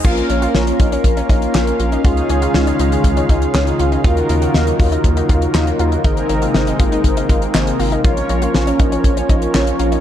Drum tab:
CC |x---------------|----------------|----------------|----------------|
HH |-xxx-xxxxxxx-xxx|xxxx-xxxxxxx-xxx|xxxx-xoxxxxx-xxx|xxxx-xxxxxxx-xox|
CP |------------x---|------------x---|------------x---|------------x---|
SD |----o-------o---|----o-------o---|----o-------o---|----o-------o---|
BD |o-----o-o-o-----|o-------o-o-----|o-----o-o-o-----|o-----o-o-o-----|

CC |----------------|
HH |xxxx-xxxxxxx-xxx|
CP |------------x---|
SD |----o-------o---|
BD |o-----o-o-o-----|